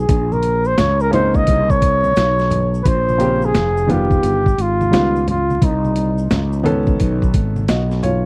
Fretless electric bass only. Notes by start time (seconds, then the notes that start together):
0.09 A#1
0.79 C#2
1.48 C2
2.17 B1
2.86 A#1
3.55 F1
4.24 G1
4.58 G#1
4.93 C#2
5.62 C2
6.32 C#2
7.01 B1
7.34 G#1
7.69 B1